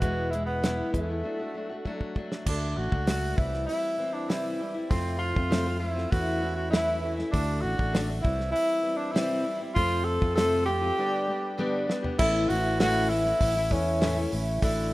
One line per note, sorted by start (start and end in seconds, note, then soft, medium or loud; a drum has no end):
0.00 0.81 E1 medium
0.00 0.32 E2 medium
0.00 0.32 B2 medium
0.00 0.30 E3 medium
0.00 0.31 G#3 medium
0.00 0.33 B3 medium
0.00 0.33 E4 medium
0.00 0.32 F#4 medium
0.00 kick loud
0.00 closed hi-hat medium
0.31 0.62 E3 medium
0.31 0.62 G#3 medium
0.31 0.62 B3 medium
0.31 0.45 E4 medium
0.31 closed hi-hat medium
0.35 0.63 E4 medium
0.46 0.90 B3 medium
0.62 0.93 E2 medium
0.62 0.93 B2 medium
0.62 0.91 E3 medium
0.62 0.93 G#3 medium
0.62 0.94 B3 medium
0.62 0.94 E4 medium
0.62 snare loud
0.62 closed hi-hat medium
0.93 1.21 E2 medium
0.93 1.08 E3 medium
0.93 1.09 G#3 soft
0.93 2.12 A3 medium
0.93 1.09 B3 medium
0.93 1.07 E4 medium
0.93 kick medium
0.93 closed hi-hat medium
1.09 1.22 E3 soft
1.09 1.23 G#3 soft
1.09 1.24 B3 medium
1.09 1.24 E4 soft
1.23 1.39 F#3 medium
1.23 1.39 A3 medium
1.23 1.40 D4 medium
1.23 1.38 F#4 medium
1.39 1.54 A3 soft
1.39 1.55 D4 soft
1.39 1.55 F#4 soft
1.54 1.70 F#3 medium
1.54 1.70 A3 medium
1.54 1.70 D4 medium
1.54 1.68 F#4 medium
1.69 1.85 A3 soft
1.69 1.86 D4 medium
1.69 1.85 F#4 medium
1.85 2.14 F#3 medium
1.85 2.15 A3 medium
1.85 2.17 D4 loud
1.85 2.17 F#4 loud
1.85 kick medium
2.01 kick medium
2.15 2.46 F#3 medium
2.15 2.46 A3 medium
2.15 2.46 D4 medium
2.15 2.47 F#4 medium
2.15 kick medium
2.32 snare medium
2.46 2.74 D2 medium
2.46 2.92 D3 medium
2.46 2.93 A3 medium
2.46 2.78 D4 medium
2.46 2.92 D4 medium
2.46 2.90 F#4 medium
2.46 kick loud
2.46 crash loud
2.77 2.91 A1 loud
2.77 3.38 F#4 medium
2.91 3.33 C#2 medium
2.91 3.07 A3 soft
2.91 3.08 D4 medium
2.91 3.07 F#4 medium
2.91 kick medium
3.07 3.37 A3 medium
3.07 3.38 D4 medium
3.07 3.39 F#4 medium
3.07 snare loud
3.07 open hi-hat medium
3.36 3.65 C2 medium
3.36 3.96 E3 soft
3.36 3.98 G3 medium
3.36 3.99 C4 medium
3.36 3.66 E4 medium
3.36 3.99 E4 medium
3.36 kick loud
3.54 snare soft
3.66 4.15 E4 medium
3.66 open hi-hat medium
3.97 4.28 E3 medium
3.97 4.28 G3 medium
3.97 4.29 C4 medium
3.97 4.29 E4 medium
4.14 4.31 D4 medium
4.28 4.59 C3 medium
4.28 4.58 E3 medium
4.28 4.59 G3 medium
4.28 4.60 C4 medium
4.28 4.76 E4 medium
4.28 4.61 E4 medium
4.28 snare loud
4.28 open hi-hat medium
4.59 4.75 E3 medium
4.59 4.76 G3 medium
4.59 4.74 C4 medium
4.59 4.73 E4 medium
4.74 4.91 G3 soft
4.74 4.90 C4 soft
4.74 4.90 E4 soft
4.89 5.36 F2 medium
4.89 5.32 F2 loud
4.89 5.36 C3 medium
4.89 5.36 F3 medium
4.89 5.36 A3 medium
4.89 5.18 C4 medium
4.89 5.35 C4 medium
4.89 5.34 F4 medium
4.89 kick loud
4.89 open hi-hat medium
5.19 5.77 F4 loud
5.35 6.05 F2 medium
5.35 5.49 F3 soft
5.35 5.49 A3 soft
5.35 5.50 C4 medium
5.35 5.50 F4 medium
5.35 kick medium
5.49 5.66 F2 medium
5.49 5.66 C3 medium
5.49 5.66 F3 medium
5.49 5.66 A3 medium
5.49 5.66 C4 medium
5.49 5.64 F4 medium
5.49 snare loud
5.49 open hi-hat medium
5.65 5.79 F3 soft
5.65 5.80 A3 soft
5.65 5.81 C4 soft
5.65 5.81 F4 soft
5.79 5.96 F3 medium
5.79 5.96 A3 medium
5.79 5.95 C4 medium
5.79 6.12 E4 medium
5.84 5.93 F4 medium
5.94 6.10 A3 soft
5.94 6.12 C4 soft
5.94 6.11 F4 soft
5.94 snare soft
5.98 6.10 F3 soft
6.10 7.21 E2 medium
6.10 6.40 E3 medium
6.10 6.41 A3 medium
6.10 6.42 C#4 medium
6.10 6.43 E4 medium
6.10 6.55 F#4 loud
6.10 kick loud
6.10 open hi-hat medium
6.41 6.70 E3 medium
6.41 6.71 A3 medium
6.41 6.72 C#4 medium
6.41 6.73 E4 medium
6.55 6.70 F#4 medium
6.70 7.00 E3 medium
6.70 7.01 A3 medium
6.70 7.02 C#4 medium
6.70 7.14 E4 medium
6.70 7.03 E4 loud
6.70 snare loud
6.70 open hi-hat soft
7.01 7.18 E3 medium
7.01 7.18 A3 medium
7.01 7.16 C#4 medium
7.01 7.15 E4 medium
7.16 7.31 A3 soft
7.16 7.32 C#4 soft
7.16 7.33 E4 medium
7.16 snare soft
7.31 7.61 D2 loud
7.31 7.78 D3 medium
7.31 7.79 A3 medium
7.31 7.63 D4 medium
7.31 7.77 D4 medium
7.31 7.76 F#4 medium
7.31 kick loud
7.31 open hi-hat medium
7.61 7.78 A1 loud
7.61 7.97 F#4 loud
7.77 8.20 A1 medium
7.77 7.92 A3 soft
7.77 7.93 D4 medium
7.77 7.93 F#4 medium
7.77 kick medium
7.93 8.09 D3 medium
7.93 8.09 A3 medium
7.93 8.09 D4 medium
7.93 8.06 F#4 medium
7.93 snare loud
7.93 open hi-hat medium
8.07 8.23 A3 soft
8.07 8.24 D4 soft
8.07 8.24 F#4 medium
8.21 8.52 C2 medium
8.21 8.82 E3 medium
8.21 8.83 G3 medium
8.21 8.85 C4 medium
8.21 8.51 E4 medium
8.21 kick loud
8.25 8.85 E4 medium
8.40 snare soft
8.51 8.99 E4 loud
8.56 open hi-hat medium
8.83 9.13 E3 medium
8.83 9.14 G3 medium
8.83 9.14 C4 medium
8.83 9.14 E4 medium
8.97 9.13 D4 medium
9.12 9.45 C3 medium
9.12 9.42 E3 medium
9.12 9.43 G3 medium
9.12 9.44 C4 medium
9.12 9.60 E4 medium
9.12 9.46 E4 medium
9.12 open hi-hat medium
9.16 snare loud
9.43 9.60 E3 medium
9.43 9.61 G3 medium
9.43 9.60 C4 medium
9.43 9.58 E4 medium
9.59 9.76 G3 soft
9.59 9.76 C4 medium
9.59 9.76 E4 medium
9.75 10.21 F2 medium
9.75 10.17 F2 loud
9.75 10.22 C3 medium
9.75 10.22 F3 medium
9.75 10.21 A3 medium
9.75 10.20 C4 medium
9.75 10.06 F4 loud
9.75 10.19 F4 medium
9.75 kick loud
9.75 open hi-hat medium
10.04 10.35 A4 loud
10.20 10.90 F2 medium
10.20 10.35 F3 soft
10.20 10.35 A3 medium
10.20 10.36 C4 medium
10.20 10.36 F4 medium
10.20 kick medium
10.35 10.66 F2 medium
10.35 10.67 C3 medium
10.35 10.64 F3 medium
10.35 10.66 A3 medium
10.35 10.67 C4 medium
10.35 10.68 F4 medium
10.35 10.64 A4 loud
10.35 snare loud
10.35 open hi-hat medium
10.65 10.82 F3 medium
10.65 10.82 A3 medium
10.65 10.82 C4 medium
10.65 10.80 F4 medium
10.65 11.84 G4 loud
10.81 10.98 F3 soft
10.81 10.98 A3 soft
10.81 10.98 C4 soft
10.81 10.97 F4 soft
10.97 11.28 G2 medium
10.97 11.28 D3 medium
10.97 11.26 G3 medium
10.97 11.27 B3 medium
10.97 11.28 D4 medium
10.97 11.29 G4 medium
11.27 11.57 G3 medium
11.27 11.58 B3 medium
11.27 11.58 D4 medium
11.27 11.59 G4 medium
11.58 11.88 G2 loud
11.58 11.89 D3 loud
11.58 11.87 G3 loud
11.58 11.88 B3 loud
11.58 11.89 D4 loud
11.58 11.89 G4 loud
11.58 high tom medium
11.88 12.04 G3 medium
11.88 12.04 B3 medium
11.88 12.03 D4 medium
11.88 12.01 G4 medium
11.88 snare medium
12.02 12.19 G3 soft
12.02 12.19 B3 medium
12.02 12.19 D4 medium
12.02 12.18 G4 medium
12.02 floor tom medium
12.18 12.46 A1 medium
12.18 12.49 A2 medium
12.18 12.47 E3 medium
12.18 12.49 A3 medium
12.18 12.50 C#4 medium
12.18 12.50 E4 loud
12.18 12.50 E4 medium
12.18 kick loud
12.18 crash loud
12.48 13.32 A1 medium
12.48 12.79 E3 medium
12.48 12.80 A3 medium
12.48 12.80 C#4 medium
12.48 12.81 E4 medium
12.48 12.79 F#4 loud
12.48 open hi-hat medium
12.80 13.10 A2 medium
12.80 13.09 E3 medium
12.80 13.10 A3 medium
12.80 13.11 C#4 medium
12.80 13.11 E4 medium
12.80 13.11 F#4 loud
12.80 snare loud
12.80 open hi-hat medium
13.09 13.25 E3 medium
13.09 13.26 A3 medium
13.09 13.26 C#4 medium
13.09 13.74 E4 loud
13.09 open hi-hat medium
13.14 13.24 E4 medium
13.25 13.57 A3 soft
13.25 13.56 C#4 medium
13.25 13.54 E4 medium
13.25 snare soft
13.41 13.68 A1 medium
13.41 kick medium
13.41 open hi-hat loud
13.55 13.70 A3 soft
13.55 13.71 C#4 soft
13.55 13.71 E4 medium
13.55 snare soft
13.70 14.25 E2 medium
13.70 14.00 E3 medium
13.70 14.01 A3 medium
13.70 14.32 C#4 medium
13.70 14.01 C#4 medium
13.70 14.02 E4 medium
13.70 kick medium
13.70 open hi-hat medium
14.01 14.16 A2 medium
14.01 14.17 E3 medium
14.01 14.17 A3 medium
14.01 14.16 C#4 loud
14.01 14.15 E4 medium
14.01 snare loud
14.01 open hi-hat medium
14.16 14.31 A3 soft
14.16 14.32 C#4 soft
14.16 14.31 E4 medium
14.31 14.60 A1 loud
14.31 14.62 E3 medium
14.31 14.62 A3 medium
14.31 14.63 C#4 medium
14.31 14.63 E4 medium
14.31 open hi-hat medium
14.62 14.94 A1 loud
14.62 14.92 A2 medium
14.62 14.91 D3 medium
14.62 14.92 A3 medium
14.62 14.93 D4 medium
14.62 14.94 E4 medium
14.62 14.93 F#4 medium
14.62 kick loud
14.62 open hi-hat medium